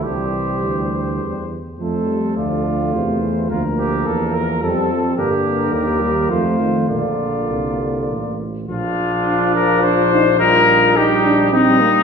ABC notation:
X:1
M:3/4
L:1/8
Q:1/4=105
K:Bblyd
V:1 name="Trumpet"
c4- c z | c2 d2 c2 | B4 A2 | [K:Bb] B B3 c2 |
d4- d z | F3 B c2 | B2 G2 E2 |]
V:2 name="Flugelhorn"
G4- G z | A2 F4 | F G A B A2 | [K:Bb] G2 G2 F2 |
F4- F z | D6 | E2 E2 E2 |]
V:3 name="French horn"
G,4- G, z | A,2 A, A,3 | B,4 C2 | [K:Bb] B,4 A,2 |
B,4- B, z | F,6 | G,2 G,2 G,2 |]
V:4 name="Euphonium" clef=bass
E,4- E, z | F, G, F,2 C, E, | F,4 G, F, | [K:Bb] D,2 E, G, F, E, |
D,4- D, z | z2 D F D E | F2 E D C B, |]
V:5 name="Bass trombone" clef=bass
C,,2 D,,2 E,, z | F,,2 D,,2 E,,2 | D,,2 E,,2 F,,2 | [K:Bb] G,,2 E,,2 F,,2 |
B,,,2 C,,2 A,,,2 | B,,,6- | B,,,6 |]